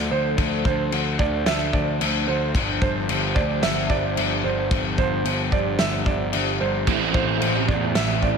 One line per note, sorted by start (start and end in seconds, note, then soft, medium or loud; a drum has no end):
0.00 2.51 F3 medium
0.00 6.84 D4 medium
0.00 2.51 A4 medium
0.00 6.84 C5 medium
0.00 0.11 D5 medium
0.11 0.36 D2 medium
0.11 0.38 C5 medium
0.38 0.63 D2 loud
0.38 kick loud
0.38 crash medium
0.65 0.90 D2 loud
0.65 1.20 C5 medium
0.65 kick medium
0.92 1.17 D2 loud
0.92 crash medium
1.19 1.45 D2 loud
1.19 1.46 D5 medium
1.19 kick medium
1.46 1.71 D2 loud
1.46 1.74 E5 medium
1.46 snare loud
1.46 crash medium
1.73 1.98 D2 loud
1.73 2.27 D5 medium
1.73 kick medium
2.01 2.26 D2 loud
2.01 crash medium
2.27 2.53 D2 loud
2.27 2.55 C5 medium
2.54 2.80 G1 loud
2.54 6.83 F3 medium
2.54 8.38 G4 medium
2.54 kick loud
2.54 crash medium
2.82 3.06 G1 loud
2.82 3.36 C5 medium
2.82 kick loud
3.09 3.34 G1 loud
3.09 crash medium
3.35 3.61 D2 medium
3.35 3.63 D5 medium
3.35 kick medium
3.62 3.88 G1 loud
3.62 3.90 E5 medium
3.62 snare loud
3.62 crash medium
3.90 4.15 G1 medium
3.90 4.44 D5 medium
3.90 kick medium
4.17 4.42 G1 loud
4.17 crash medium
4.44 4.69 G1 loud
4.44 4.71 C5 medium
4.71 4.96 G1 loud
4.71 kick loud
4.71 crash medium
4.98 5.23 G1 medium
4.98 5.52 C5 medium
4.98 kick loud
5.25 5.50 G1 medium
5.25 crash medium
5.52 5.77 G1 loud
5.52 5.79 D5 medium
5.52 kick medium
5.79 6.05 G1 loud
5.79 6.06 E5 loud
5.79 snare loud
5.79 crash medium
6.06 6.31 G1 medium
6.06 6.60 D5 medium
6.06 kick medium
6.33 6.59 G1 loud
6.33 crash medium
6.61 6.86 G1 medium
6.61 6.88 C5 medium
6.87 7.12 A1 medium
6.87 8.38 A2 medium
6.87 8.38 E3 loud
6.87 8.38 A3 medium
6.87 8.38 A3 loud
6.87 8.38 C4 loud
6.87 8.38 E4 loud
6.87 8.38 C5 loud
6.87 kick loud
6.87 crash medium
7.14 7.39 A1 medium
7.14 7.69 C5 medium
7.14 kick loud
7.42 7.67 A1 loud
7.42 crash medium
7.68 7.93 E2 loud
7.68 7.96 D5 medium
7.68 kick medium
7.95 8.21 A1 loud
7.95 8.23 E5 loud
7.95 snare loud
7.95 crash medium
8.22 8.38 A1 medium
8.22 8.38 D5 medium
8.22 kick medium